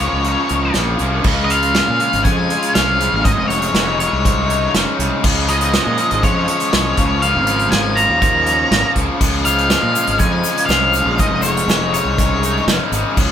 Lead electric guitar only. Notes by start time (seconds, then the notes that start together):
Already playing: C#5
1.44 D#5
1.51 F5
2.24 G#5
2.75 F5
3.24 D#5
3.48 C#5
3.99 C#5
5.49 D#5
6.24 C#5
7.22 F5
7.71 G#5
7.95 A#5
9.45 F5
10.19 G#5
10.66 F5
11.20 D#5
11.42 C#5
11.94 C#5